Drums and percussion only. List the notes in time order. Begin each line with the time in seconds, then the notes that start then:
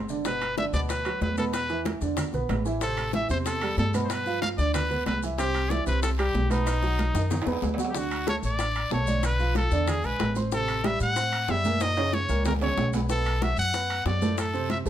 0.09 high conga, maracas
0.25 high bongo, high conga, high timbale, maracas
0.41 high bongo, high conga, high timbale, maracas
0.57 high bongo, high conga, low timbale, maracas
0.74 high bongo, high conga, maracas
0.89 high bongo, high conga, high timbale, maracas
1.05 high bongo, high conga, high timbale, maracas
1.21 high bongo, low bongo, high conga, low timbale, maracas
1.37 high conga, high timbale, maracas
1.53 high bongo, high conga, high timbale, maracas
1.70 high bongo, high conga, maracas
1.85 high bongo, high conga, high timbale, low timbale, maracas
2.01 high bongo, high conga, maracas
2.17 high bongo, high conga, low conga, high timbale, maracas
2.33 high bongo, high conga, low conga, maracas
2.49 high bongo, low bongo, high conga, high timbale, low timbale, maracas
2.66 maracas
2.81 high bongo, high conga, high timbale, long guiro, maracas
2.97 high bongo, high conga, high timbale, maracas
3.13 high bongo, high conga, low timbale, short guiro, maracas
3.29 high bongo, high conga, short guiro, maracas
3.45 high bongo, high conga, high timbale, long guiro, maracas
3.61 high bongo, high conga, high timbale, maracas
3.77 high bongo, low bongo, high conga, low timbale, short guiro, maracas
3.93 high conga, high timbale, short guiro, maracas
4.09 high bongo, high conga, high timbale, long guiro, maracas
4.26 high bongo, high conga, maracas
4.42 high bongo, high conga, high timbale, low timbale, short guiro, maracas
4.58 high bongo, high conga, short guiro, maracas
4.74 high bongo, high conga, low conga, high timbale, long guiro, maracas
4.90 high bongo, high conga, low conga, maracas
5.06 high bongo, low bongo, high conga, high timbale, low timbale, short guiro, maracas
5.23 short guiro, maracas
5.38 high bongo, high conga, high timbale, long guiro, maracas
5.54 high bongo, high conga, high timbale, maracas
5.70 high bongo, high conga, low timbale, short guiro, maracas
5.86 high bongo, high conga, short guiro, maracas
6.03 high bongo, high conga, high timbale, long guiro, maracas
6.19 high bongo, high conga, high timbale, maracas
6.34 high bongo, low bongo, high conga, low timbale, short guiro, maracas
6.51 high conga, high timbale, short guiro, maracas
6.67 high bongo, high timbale, long guiro, maracas
6.83 high bongo, high conga, maracas
6.99 high conga, high timbale, low timbale, short guiro, maracas
7.15 high bongo, high conga, short guiro, maracas
7.30 low bongo, high conga, low conga, high timbale, long guiro, maracas
7.42 high timbale
7.47 low bongo, high conga, maracas
7.52 low timbale
7.62 low bongo, high conga, low timbale, short guiro, maracas
7.74 low timbale
7.78 low bongo, short guiro, maracas
7.85 low timbale
7.95 high bongo, high conga, long guiro, maracas
8.11 high conga, high timbale, maracas
8.27 high bongo, high conga, high timbale, low timbale, short guiro, maracas
8.43 high conga, short guiro, maracas
8.59 high bongo, high conga, high timbale, long guiro, maracas
8.75 high conga, high timbale, maracas
8.91 high bongo, low bongo, high conga, low timbale, short guiro, maracas
9.07 high conga, short guiro, maracas
9.23 high bongo, high conga, high timbale, long guiro, maracas
9.39 high bongo, high conga, maracas
9.55 high bongo, high conga, high timbale, low timbale, short guiro, maracas
9.71 high bongo, short guiro, maracas
9.87 high bongo, high conga, low conga, high timbale, long guiro, maracas
10.04 high conga, maracas
10.19 high bongo, low bongo, high conga, high timbale, low timbale, short guiro, maracas
10.35 high bongo, high conga, short guiro, maracas
10.52 high bongo, high conga, long guiro, maracas
10.68 high conga, high timbale, maracas
10.84 high bongo, high conga, high timbale, low timbale, short guiro, maracas
10.99 high conga, short guiro, maracas
11.16 high bongo, high conga, high timbale, long guiro, maracas
11.32 high conga, high timbale, maracas
11.48 high bongo, low bongo, high conga, low timbale, short guiro, maracas
11.64 high conga, short guiro, maracas
11.80 high bongo, high timbale, long guiro, maracas
11.96 high bongo, high conga, high timbale, maracas
12.12 high bongo, high conga, short guiro, maracas
12.28 high bongo, high conga, short guiro, maracas
12.45 high bongo, high conga, low conga, low timbale, long guiro, maracas
12.61 high conga, low conga, low timbale, maracas
12.77 high bongo, low bongo, high conga, low timbale, short guiro, maracas
12.93 high bongo, high conga, low timbale, short guiro, maracas
13.09 high bongo, high conga, long guiro, maracas
13.26 high conga, high timbale, maracas
13.41 high bongo, high conga, high timbale, low timbale, short guiro, maracas
13.57 high conga, short guiro, maracas
13.73 high bongo, high conga, high timbale, long guiro, maracas
13.90 high conga, high timbale, maracas
14.05 high bongo, low bongo, high conga, low timbale, short guiro, maracas
14.21 high conga, short guiro, maracas
14.37 high bongo, high timbale, long guiro, maracas
14.54 high bongo, high conga, maracas
14.70 high bongo, high conga, high timbale, low timbale, short guiro, maracas
14.86 high bongo, short guiro, maracas